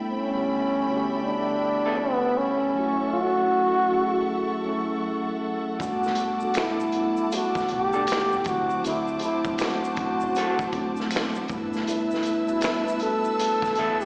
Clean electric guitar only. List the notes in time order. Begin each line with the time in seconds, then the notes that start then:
1.86 B3 E4 A4
7.94 D4 G4 A4
10.37 C4 F#4 A4
13.41 muted clean electric guitar stroke
13.78 B3 E4 A4